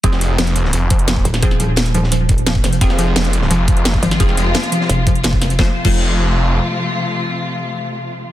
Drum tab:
CC |----------------|----------------|----------------|----------------|
HH |x-x-xxx-x-xxx-xx|x-x-xxx-x-xxx-xx|x-x-xxx-x-xxx-xx|x-x-xxx-x-xxx-xx|
SD |-o--o--o----oo-o|-o--o--oo---o-o-|-o--o--o----oo-o|-o--o--oo---o-o-|
BD |o---------o--o--|o---------o--o--|o---------o--o--|o---------o--o--|

CC |---x------------|----------------|
HH |----------------|----------------|
SD |o---------------|----------------|
BD |o--o------------|----------------|